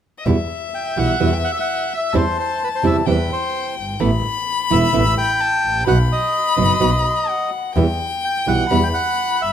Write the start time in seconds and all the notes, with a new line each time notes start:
0.18 D#5
0.24 E2 B2 E3 G3 B3 E4 E5
0.75 G5
0.96 B1 B2 E3 G3 B3 E4 F#5
1.20 E2 B2 E3 G3 B3 E4
1.33 G5
1.44 F#5
1.52 E5
1.60 F#5
1.94 E5
2.13 E2 C3 E3 G3 C4 E4 A5
2.17 C5
2.40 C5
2.64 B4
2.75 C5
2.83 E2 C3 E3 G3 C4 E4 E5
3.06 E2 C3 E3 G3 C4 E4 G5
3.10 B4
3.33 C5
3.77 G1
4.00 A1 E3 A3 B3 E4 B5
4.70 E1 E3 A3 B3 E4 E5
4.93 A1 E3 A3 B3 E4
5.18 G5
5.41 A5
5.64 A1
5.87 B1 B2 F#3 B3 D#4 F#4 F#5 B5
6.12 D#5
6.57 F#1 B2 F#3 B3 D#4 F#4
6.61 D#5
6.80 B1 B2 F#3 B3 D#4 F#4
7.29 F#5
7.76 E2 B2 E3 G3 B3 E4 G5
8.25 G5
8.46 B1 B2 E3 G3 B3 E4 F#5
8.70 E2 B2 E3 G3 B3 E4 B5
8.83 G5
8.94 F#5
9.41 G1 E5